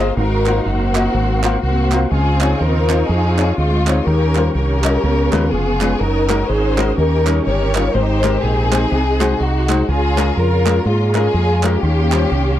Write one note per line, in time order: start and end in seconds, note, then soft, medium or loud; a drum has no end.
0.00 0.14 C4 medium
0.00 0.14 F4 medium
0.00 0.14 G#4 medium
0.00 0.16 G#4 medium
0.00 0.16 C5 medium
0.00 0.17 C5 loud
0.00 0.16 F5 medium
0.00 0.16 A#5 medium
0.17 0.58 G#1 loud
0.17 0.91 G#2 medium
0.17 1.11 D#4 medium
0.17 0.66 F#4 medium
0.17 2.10 A#4 medium
0.17 0.63 A#4 loud
0.17 5.96 F5 medium
0.17 1.14 F#5 medium
0.17 1.13 C6 medium
0.46 0.57 A#3 medium
0.46 0.57 F4 medium
0.46 0.58 F#4 medium
0.46 0.58 C5 medium
0.46 clap medium
0.66 1.07 F#1 medium
0.66 1.60 A#3 medium
0.66 1.60 C4 medium
0.66 1.62 F#4 medium
0.95 1.06 A#3 medium
0.95 1.06 F4 medium
0.95 1.06 F#4 medium
0.95 1.06 D#5 medium
0.95 clap medium
1.14 1.56 G#1 loud
1.14 1.89 G#2 medium
1.14 2.11 F#5 medium
1.14 2.11 C6 medium
1.43 1.55 A#3 medium
1.43 1.55 F4 medium
1.43 1.55 F#4 medium
1.43 1.55 C5 medium
1.43 clap medium
1.63 2.04 C2 medium
1.63 2.09 A#3 medium
1.63 2.09 C4 medium
1.63 2.08 F#4 medium
1.92 2.03 A#3 medium
1.92 2.03 F4 medium
1.92 2.03 F#4 medium
1.92 2.04 C5 medium
1.92 clap medium
2.11 2.53 C#2 loud
2.11 2.86 C#3 medium
2.11 3.05 C4 medium
2.11 2.59 F4 medium
2.11 2.57 G#4 loud
2.11 4.04 D#5 medium
2.11 5.00 C#6 medium
2.41 2.51 C4 medium
2.41 2.52 D#4 medium
2.41 2.52 F4 medium
2.41 2.52 C#5 medium
2.41 clap medium
2.60 3.02 D#2 medium
2.60 3.54 D#4 medium
2.60 3.08 F4 medium
2.60 3.09 A#4 loud
2.89 3.00 C4 medium
2.89 3.00 D#4 medium
2.89 3.00 F4 medium
2.89 3.00 C5 medium
2.89 clap loud
3.09 3.50 F2 loud
3.09 3.56 C4 medium
3.09 3.56 F4 medium
3.09 3.58 G#4 loud
3.38 3.49 C4 medium
3.38 3.49 D#4 medium
3.38 3.49 F4 medium
3.38 3.49 C#5 medium
3.38 clap loud
3.57 3.99 D2 medium
3.57 4.03 G#3 medium
3.57 4.03 C4 medium
3.57 4.03 F4 medium
3.87 3.97 C4 medium
3.87 3.98 D#4 medium
3.87 3.98 F4 medium
3.87 3.98 C#5 medium
3.87 clap medium
4.06 4.48 D#2 loud
4.06 4.80 D#3 medium
4.06 4.54 C#4 medium
4.06 4.54 G4 medium
4.06 4.53 A#4 loud
4.06 5.03 G5 medium
4.35 4.46 G3 medium
4.35 4.46 C#4 medium
4.35 4.46 F4 medium
4.35 4.46 C5 medium
4.35 clap medium
4.55 4.96 C2 medium
4.55 5.48 C#4 medium
4.55 5.48 G4 medium
4.55 5.48 A#4 loud
4.84 4.94 G3 medium
4.84 4.95 C#4 medium
4.84 4.95 F4 medium
4.84 4.95 D#5 medium
4.84 clap loud
5.03 5.28 C#2 loud
5.03 5.77 C#3 medium
5.03 5.99 B3 medium
5.03 5.99 C#6 medium
5.32 5.49 D#2 medium
5.32 5.43 G#3 medium
5.32 5.43 C#4 medium
5.32 5.43 F4 medium
5.32 5.43 B4 medium
5.32 clap loud
5.51 5.93 F1 medium
5.51 5.97 B3 medium
5.51 5.97 F4 medium
5.51 6.00 G#4 loud
5.81 5.91 G#3 medium
5.81 5.92 C#4 medium
5.81 5.92 F4 medium
5.81 5.92 B4 medium
5.81 clap medium
6.00 6.42 F#1 loud
6.00 6.94 C#4 medium
6.00 6.48 D#4 medium
6.00 8.89 A#4 medium
6.00 6.49 A#4 loud
6.00 6.96 F#5 medium
6.00 6.96 D#6 medium
6.29 6.40 G#3 medium
6.29 6.40 D#4 medium
6.29 6.40 F#4 medium
6.29 6.40 A#4 medium
6.29 clap medium
6.49 6.90 G#1 medium
6.49 6.94 D#4 medium
6.49 6.94 G#4 medium
6.49 6.97 C5 loud
6.77 6.88 G#3 medium
6.77 6.88 D#4 medium
6.77 6.89 F#4 medium
6.77 6.89 A#4 medium
6.77 clap loud
6.97 7.39 D#2 loud
6.97 7.71 D#3 medium
6.97 7.91 C#4 medium
6.97 7.45 G4 medium
6.97 7.43 A#4 loud
6.97 7.92 D#5 medium
6.97 8.90 G5 medium
6.97 7.94 C#6 medium
7.26 7.37 G3 medium
7.26 7.37 C#4 medium
7.26 7.37 D#4 medium
7.26 7.37 A#4 medium
7.26 clap loud
7.46 7.88 G1 medium
7.46 7.91 G4 medium
7.46 7.91 A#4 medium
7.46 7.95 C#5 loud
7.75 7.85 G3 medium
7.75 7.86 C#4 medium
7.75 7.86 D#4 medium
7.75 7.86 F4 medium
7.75 clap medium
7.93 8.36 G#1 loud
7.93 8.68 G#2 medium
7.93 8.42 D#4 medium
7.93 8.88 G4 medium
7.93 8.43 C5 loud
7.93 8.90 D#5 medium
7.93 9.86 C6 medium
8.23 8.34 G#3 medium
8.23 8.34 C4 medium
8.23 8.34 G4 medium
8.23 8.34 A#4 medium
8.23 clap medium
8.43 8.84 A#1 medium
8.43 9.36 C4 medium
8.43 9.36 D#4 medium
8.43 9.40 G#4 loud
8.71 8.82 G#3 medium
8.71 8.82 C4 medium
8.71 8.83 G4 medium
8.71 8.83 C5 medium
8.71 clap loud
8.91 9.33 C2 medium
8.91 9.65 C3 medium
8.91 11.80 G#4 medium
8.91 9.88 D#5 medium
8.91 9.87 F#5 medium
9.20 9.31 G#3 medium
9.20 9.31 D#4 medium
9.20 9.31 F#4 medium
9.20 9.31 C5 medium
9.20 clap medium
9.40 9.81 C2 medium
9.40 9.85 D#4 medium
9.40 9.89 F#4 medium
9.69 9.80 G#3 medium
9.69 9.80 D#4 medium
9.69 9.80 F#4 medium
9.69 9.80 C5 medium
9.69 clap medium
9.88 10.30 C#2 medium
9.88 10.62 C#3 medium
9.88 10.36 F4 medium
9.88 10.37 G#4 loud
9.88 12.60 C#5 medium
9.88 12.60 F5 medium
9.88 11.81 A#5 medium
10.17 10.28 G#3 medium
10.17 10.28 C#4 medium
10.17 10.28 F4 medium
10.17 10.28 A#4 medium
10.17 clap medium
10.37 10.79 F2 medium
10.37 10.85 F4 medium
10.37 10.86 A#4 loud
10.65 10.77 G#3 medium
10.65 10.77 C#4 medium
10.65 10.77 F4 medium
10.65 10.77 A#4 medium
10.65 clap loud
10.86 11.27 G#2 loud
10.86 11.79 G#3 medium
10.86 11.63 A#3 medium
10.86 11.15 F4 medium
11.14 11.25 G#3 medium
11.14 11.25 C#4 medium
11.14 11.26 F4 medium
11.14 11.80 F4 medium
11.14 11.64 G#4 loud
11.14 11.26 A#4 medium
11.14 clap loud
11.34 11.76 F2 medium
11.63 11.74 G#3 medium
11.63 12.60 A#3 medium
11.63 11.74 C#4 medium
11.63 12.60 C#4 medium
11.63 11.74 F4 medium
11.63 12.60 G4 loud
11.63 11.74 A#4 medium
11.63 clap medium
11.83 12.24 D#2 loud
11.83 12.57 D#3 medium
11.83 12.60 G4 medium
11.83 12.60 C6 medium
12.12 12.23 G3 medium
12.12 12.23 C#4 medium
12.12 12.23 F4 medium
12.12 12.23 C5 medium
12.12 clap medium
12.32 12.60 C2 medium